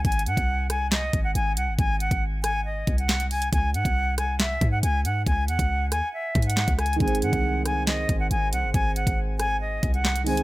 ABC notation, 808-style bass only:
X:1
M:4/4
L:1/16
Q:1/4=138
K:G#phr
V:1 name="808-style bass" clef=bass
G,,,2 G,, ^B,,,6- B,,, G,,,2 G,,,2 B,,, G,,, | G,,,3 G,,,6- G,,, ^B,,,6 | C,,2 G,, ^B,,,6- B,,, G,,2 C,,2 G,,2 | C,,2 E,, C,,3 D,, z3 G,,3 C,,3 |
G,,,2 G,, ^B,,,6- B,,, G,,,2 G,,,2 B,,, G,,, | G,,,3 G,,,6- G,,, ^B,,,6 |]